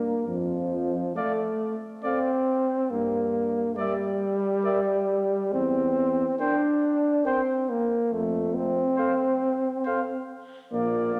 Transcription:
0, 0, Header, 1, 6, 480
1, 0, Start_track
1, 0, Tempo, 870827
1, 155, Time_signature, 3, 2, 24, 8
1, 6172, End_track
2, 0, Start_track
2, 0, Title_t, "Cornet"
2, 0, Program_c, 0, 56
2, 642, Note_on_c, 0, 77, 33
2, 731, Note_off_c, 0, 77, 0
2, 1133, Note_on_c, 0, 77, 42
2, 1222, Note_off_c, 0, 77, 0
2, 2093, Note_on_c, 0, 76, 34
2, 2181, Note_off_c, 0, 76, 0
2, 2565, Note_on_c, 0, 76, 44
2, 2653, Note_off_c, 0, 76, 0
2, 3528, Note_on_c, 0, 79, 40
2, 3617, Note_off_c, 0, 79, 0
2, 4001, Note_on_c, 0, 79, 39
2, 4089, Note_off_c, 0, 79, 0
2, 4955, Note_on_c, 0, 77, 39
2, 5043, Note_off_c, 0, 77, 0
2, 5438, Note_on_c, 0, 77, 41
2, 5526, Note_off_c, 0, 77, 0
2, 5919, Note_on_c, 0, 77, 43
2, 6172, Note_off_c, 0, 77, 0
2, 6172, End_track
3, 0, Start_track
3, 0, Title_t, "Trumpet"
3, 0, Program_c, 1, 56
3, 642, Note_on_c, 1, 74, 34
3, 731, Note_off_c, 1, 74, 0
3, 1119, Note_on_c, 1, 74, 37
3, 1207, Note_off_c, 1, 74, 0
3, 2079, Note_on_c, 1, 74, 37
3, 2167, Note_off_c, 1, 74, 0
3, 2556, Note_on_c, 1, 74, 35
3, 2644, Note_off_c, 1, 74, 0
3, 3525, Note_on_c, 1, 72, 34
3, 3613, Note_off_c, 1, 72, 0
3, 4005, Note_on_c, 1, 72, 37
3, 4093, Note_off_c, 1, 72, 0
3, 4940, Note_on_c, 1, 72, 35
3, 5028, Note_off_c, 1, 72, 0
3, 5426, Note_on_c, 1, 72, 31
3, 5514, Note_off_c, 1, 72, 0
3, 5913, Note_on_c, 1, 74, 43
3, 6172, Note_off_c, 1, 74, 0
3, 6172, End_track
4, 0, Start_track
4, 0, Title_t, "French horn"
4, 0, Program_c, 2, 60
4, 639, Note_on_c, 2, 69, 36
4, 727, Note_off_c, 2, 69, 0
4, 1123, Note_on_c, 2, 69, 35
4, 1211, Note_off_c, 2, 69, 0
4, 2082, Note_on_c, 2, 70, 40
4, 2171, Note_off_c, 2, 70, 0
4, 2553, Note_on_c, 2, 70, 43
4, 2642, Note_off_c, 2, 70, 0
4, 3523, Note_on_c, 2, 70, 37
4, 3612, Note_off_c, 2, 70, 0
4, 3994, Note_on_c, 2, 70, 37
4, 4083, Note_off_c, 2, 70, 0
4, 4952, Note_on_c, 2, 69, 36
4, 5041, Note_off_c, 2, 69, 0
4, 5438, Note_on_c, 2, 69, 33
4, 5527, Note_off_c, 2, 69, 0
4, 5919, Note_on_c, 2, 65, 39
4, 6172, Note_off_c, 2, 65, 0
4, 6172, End_track
5, 0, Start_track
5, 0, Title_t, "Trombone"
5, 0, Program_c, 3, 57
5, 0, Note_on_c, 3, 58, 57
5, 148, Note_off_c, 3, 58, 0
5, 152, Note_on_c, 3, 53, 49
5, 628, Note_off_c, 3, 53, 0
5, 638, Note_on_c, 3, 57, 54
5, 964, Note_off_c, 3, 57, 0
5, 1125, Note_on_c, 3, 60, 69
5, 1603, Note_on_c, 3, 58, 55
5, 1611, Note_off_c, 3, 60, 0
5, 2082, Note_on_c, 3, 55, 70
5, 2090, Note_off_c, 3, 58, 0
5, 3046, Note_on_c, 3, 60, 67
5, 3054, Note_off_c, 3, 55, 0
5, 3520, Note_off_c, 3, 60, 0
5, 3523, Note_on_c, 3, 62, 65
5, 4004, Note_on_c, 3, 60, 63
5, 4012, Note_off_c, 3, 62, 0
5, 4243, Note_on_c, 3, 58, 64
5, 4251, Note_off_c, 3, 60, 0
5, 4479, Note_on_c, 3, 57, 61
5, 4487, Note_off_c, 3, 58, 0
5, 4712, Note_on_c, 3, 60, 64
5, 4720, Note_off_c, 3, 57, 0
5, 5670, Note_off_c, 3, 60, 0
5, 5912, Note_on_c, 3, 58, 54
5, 6136, Note_off_c, 3, 58, 0
5, 6149, Note_on_c, 3, 58, 55
5, 6172, Note_off_c, 3, 58, 0
5, 6172, End_track
6, 0, Start_track
6, 0, Title_t, "Tuba"
6, 0, Program_c, 4, 58
6, 0, Note_on_c, 4, 43, 39
6, 76, Note_off_c, 4, 43, 0
6, 150, Note_on_c, 4, 41, 41
6, 556, Note_off_c, 4, 41, 0
6, 1606, Note_on_c, 4, 43, 44
6, 2004, Note_off_c, 4, 43, 0
6, 3048, Note_on_c, 4, 40, 47
6, 3446, Note_off_c, 4, 40, 0
6, 4477, Note_on_c, 4, 41, 47
6, 4872, Note_off_c, 4, 41, 0
6, 5912, Note_on_c, 4, 34, 41
6, 6172, Note_off_c, 4, 34, 0
6, 6172, End_track
0, 0, End_of_file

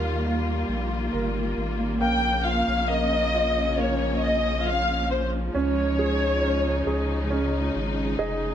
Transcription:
0, 0, Header, 1, 5, 480
1, 0, Start_track
1, 0, Tempo, 882353
1, 1094, Time_signature, 4, 2, 24, 8
1, 4648, End_track
2, 0, Start_track
2, 0, Title_t, "Violin section"
2, 0, Program_c, 0, 48
2, 0, Note_on_c, 0, 77, 79
2, 110, Note_off_c, 0, 77, 0
2, 1102, Note_on_c, 0, 79, 86
2, 1321, Note_off_c, 0, 79, 0
2, 1336, Note_on_c, 0, 77, 80
2, 1575, Note_off_c, 0, 77, 0
2, 1578, Note_on_c, 0, 75, 87
2, 2056, Note_off_c, 0, 75, 0
2, 2065, Note_on_c, 0, 73, 71
2, 2299, Note_off_c, 0, 73, 0
2, 2300, Note_on_c, 0, 75, 76
2, 2537, Note_off_c, 0, 75, 0
2, 2544, Note_on_c, 0, 77, 82
2, 2779, Note_off_c, 0, 77, 0
2, 2783, Note_on_c, 0, 72, 67
2, 2889, Note_off_c, 0, 72, 0
2, 3022, Note_on_c, 0, 73, 72
2, 3956, Note_off_c, 0, 73, 0
2, 4648, End_track
3, 0, Start_track
3, 0, Title_t, "Grand piano"
3, 0, Program_c, 1, 0
3, 0, Control_c, 1, 64, 127
3, 0, Note_on_c, 1, 51, 62
3, 0, Note_on_c, 1, 58, 45
3, 0, Note_on_c, 1, 67, 45
3, 0, Note_on_c, 1, 70, 44
3, 135, Note_off_c, 1, 58, 0
3, 143, Note_on_c, 1, 58, 48
3, 593, Note_off_c, 1, 67, 0
3, 607, Note_off_c, 1, 70, 0
3, 615, Note_on_c, 1, 70, 45
3, 1074, Note_off_c, 1, 51, 0
3, 1077, Note_off_c, 1, 58, 0
3, 1080, Note_off_c, 1, 70, 0
3, 1092, Note_on_c, 1, 58, 58
3, 1102, Control_c, 1, 64, 0
3, 1194, Control_c, 1, 64, 127
3, 1329, Note_on_c, 1, 65, 43
3, 1568, Note_off_c, 1, 58, 0
3, 1576, Note_on_c, 1, 58, 42
3, 1810, Note_off_c, 1, 65, 0
3, 1818, Note_on_c, 1, 65, 43
3, 2047, Note_off_c, 1, 58, 0
3, 2055, Note_on_c, 1, 58, 48
3, 2526, Note_off_c, 1, 65, 0
3, 2534, Note_on_c, 1, 65, 49
3, 2993, Note_off_c, 1, 58, 0
3, 3000, Note_off_c, 1, 65, 0
3, 3017, Note_on_c, 1, 61, 63
3, 3021, Control_c, 1, 64, 0
3, 3113, Control_c, 1, 64, 127
3, 3259, Note_on_c, 1, 68, 50
3, 3488, Note_off_c, 1, 61, 0
3, 3496, Note_on_c, 1, 61, 45
3, 3730, Note_off_c, 1, 68, 0
3, 3738, Note_on_c, 1, 68, 44
3, 3965, Note_off_c, 1, 61, 0
3, 3973, Note_on_c, 1, 61, 48
3, 4446, Note_off_c, 1, 68, 0
3, 4454, Note_on_c, 1, 68, 54
3, 4455, Note_on_c, 1, 75, 63
3, 4648, Note_off_c, 1, 61, 0
3, 4648, Note_off_c, 1, 68, 0
3, 4648, Note_off_c, 1, 75, 0
3, 4648, End_track
4, 0, Start_track
4, 0, Title_t, "String section"
4, 0, Program_c, 2, 48
4, 0, Note_on_c, 2, 51, 55
4, 0, Note_on_c, 2, 55, 52
4, 0, Note_on_c, 2, 58, 59
4, 0, Note_on_c, 2, 65, 72
4, 1075, Note_off_c, 2, 65, 0
4, 1076, Note_off_c, 2, 51, 0
4, 1079, Note_off_c, 2, 55, 0
4, 1096, Note_on_c, 2, 53, 54
4, 1097, Note_on_c, 2, 49, 60
4, 1098, Note_on_c, 2, 61, 68
4, 2996, Note_off_c, 2, 58, 0
4, 2997, Note_off_c, 2, 49, 0
4, 2997, Note_off_c, 2, 61, 0
4, 3020, Note_on_c, 2, 56, 51
4, 3022, Note_on_c, 2, 63, 66
4, 3023, Note_on_c, 2, 49, 61
4, 4648, Note_off_c, 2, 49, 0
4, 4648, Note_off_c, 2, 53, 0
4, 4648, Note_off_c, 2, 56, 0
4, 4648, Note_off_c, 2, 63, 0
4, 4648, End_track
5, 0, Start_track
5, 0, Title_t, "Sub bass"
5, 0, Program_c, 3, 38
5, 0, Note_on_c, 3, 39, 93
5, 352, Note_off_c, 3, 39, 0
5, 374, Note_on_c, 3, 34, 76
5, 597, Note_off_c, 3, 34, 0
5, 619, Note_on_c, 3, 31, 85
5, 840, Note_off_c, 3, 31, 0
5, 856, Note_on_c, 3, 32, 69
5, 1095, Note_on_c, 3, 34, 109
5, 1103, Note_off_c, 3, 32, 0
5, 1433, Note_off_c, 3, 34, 0
5, 1456, Note_on_c, 3, 34, 91
5, 2993, Note_off_c, 3, 34, 0
5, 3020, Note_on_c, 3, 37, 105
5, 3715, Note_off_c, 3, 37, 0
5, 3735, Note_on_c, 3, 37, 93
5, 4193, Note_off_c, 3, 37, 0
5, 4219, Note_on_c, 3, 32, 76
5, 4440, Note_off_c, 3, 32, 0
5, 4453, Note_on_c, 3, 29, 90
5, 4648, Note_off_c, 3, 29, 0
5, 4648, End_track
0, 0, End_of_file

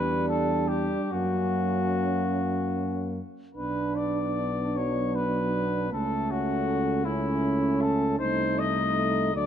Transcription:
0, 0, Header, 1, 6, 480
1, 0, Start_track
1, 0, Tempo, 813008
1, 662, Time_signature, 6, 3, 24, 8
1, 2583, Tempo, 766284
1, 5771, End_track
2, 0, Start_track
2, 0, Title_t, "Cornet"
2, 0, Program_c, 0, 56
2, 0, Note_on_c, 0, 71, 51
2, 165, Note_off_c, 0, 71, 0
2, 169, Note_on_c, 0, 69, 55
2, 402, Note_on_c, 0, 67, 51
2, 411, Note_off_c, 0, 69, 0
2, 657, Note_on_c, 0, 66, 52
2, 665, Note_off_c, 0, 67, 0
2, 1864, Note_off_c, 0, 66, 0
2, 2097, Note_on_c, 0, 71, 49
2, 2338, Note_on_c, 0, 74, 50
2, 2346, Note_off_c, 0, 71, 0
2, 2826, Note_on_c, 0, 73, 51
2, 2835, Note_off_c, 0, 74, 0
2, 3071, Note_on_c, 0, 71, 51
2, 3081, Note_off_c, 0, 73, 0
2, 3549, Note_off_c, 0, 71, 0
2, 3555, Note_on_c, 0, 69, 54
2, 3794, Note_on_c, 0, 66, 57
2, 3803, Note_off_c, 0, 69, 0
2, 4260, Note_on_c, 0, 64, 53
2, 4269, Note_off_c, 0, 66, 0
2, 4737, Note_on_c, 0, 69, 59
2, 4746, Note_off_c, 0, 64, 0
2, 4969, Note_off_c, 0, 69, 0
2, 4973, Note_on_c, 0, 72, 69
2, 5223, Note_on_c, 0, 75, 67
2, 5232, Note_off_c, 0, 72, 0
2, 5700, Note_off_c, 0, 75, 0
2, 5704, Note_on_c, 0, 74, 62
2, 5771, Note_off_c, 0, 74, 0
2, 5771, End_track
3, 0, Start_track
3, 0, Title_t, "French horn section"
3, 0, Program_c, 1, 60
3, 0, Note_on_c, 1, 62, 47
3, 655, Note_on_c, 1, 61, 42
3, 662, Note_off_c, 1, 62, 0
3, 1908, Note_off_c, 1, 61, 0
3, 2107, Note_on_c, 1, 62, 37
3, 3525, Note_off_c, 1, 62, 0
3, 3547, Note_on_c, 1, 61, 43
3, 4251, Note_off_c, 1, 61, 0
3, 4258, Note_on_c, 1, 61, 46
3, 4961, Note_off_c, 1, 61, 0
3, 4970, Note_on_c, 1, 63, 45
3, 5672, Note_off_c, 1, 63, 0
3, 5700, Note_on_c, 1, 62, 41
3, 5771, Note_off_c, 1, 62, 0
3, 5771, End_track
4, 0, Start_track
4, 0, Title_t, "Euphonium"
4, 0, Program_c, 2, 58
4, 0, Note_on_c, 2, 55, 44
4, 659, Note_off_c, 2, 55, 0
4, 663, Note_on_c, 2, 58, 42
4, 1888, Note_off_c, 2, 58, 0
4, 2109, Note_on_c, 2, 59, 40
4, 3559, Note_on_c, 2, 57, 45
4, 3568, Note_off_c, 2, 59, 0
4, 4259, Note_off_c, 2, 57, 0
4, 4263, Note_on_c, 2, 57, 45
4, 4964, Note_off_c, 2, 57, 0
4, 4980, Note_on_c, 2, 57, 52
4, 5677, Note_off_c, 2, 57, 0
4, 5701, Note_on_c, 2, 57, 43
4, 5771, Note_off_c, 2, 57, 0
4, 5771, End_track
5, 0, Start_track
5, 0, Title_t, "Trombone"
5, 0, Program_c, 3, 57
5, 0, Note_on_c, 3, 55, 52
5, 659, Note_on_c, 3, 54, 47
5, 668, Note_off_c, 3, 55, 0
5, 1744, Note_off_c, 3, 54, 0
5, 2107, Note_on_c, 3, 62, 45
5, 2833, Note_on_c, 3, 54, 40
5, 2842, Note_off_c, 3, 62, 0
5, 3546, Note_off_c, 3, 54, 0
5, 3550, Note_on_c, 3, 57, 49
5, 4255, Note_on_c, 3, 61, 57
5, 4264, Note_off_c, 3, 57, 0
5, 4974, Note_off_c, 3, 61, 0
5, 4977, Note_on_c, 3, 57, 52
5, 5697, Note_on_c, 3, 54, 42
5, 5706, Note_off_c, 3, 57, 0
5, 5771, Note_off_c, 3, 54, 0
5, 5771, End_track
6, 0, Start_track
6, 0, Title_t, "Tuba"
6, 0, Program_c, 4, 58
6, 0, Note_on_c, 4, 40, 49
6, 562, Note_off_c, 4, 40, 0
6, 662, Note_on_c, 4, 42, 42
6, 1888, Note_off_c, 4, 42, 0
6, 2108, Note_on_c, 4, 35, 39
6, 3526, Note_off_c, 4, 35, 0
6, 3556, Note_on_c, 4, 37, 52
6, 4954, Note_off_c, 4, 37, 0
6, 4979, Note_on_c, 4, 36, 49
6, 5677, Note_off_c, 4, 36, 0
6, 5704, Note_on_c, 4, 38, 48
6, 5771, Note_off_c, 4, 38, 0
6, 5771, End_track
0, 0, End_of_file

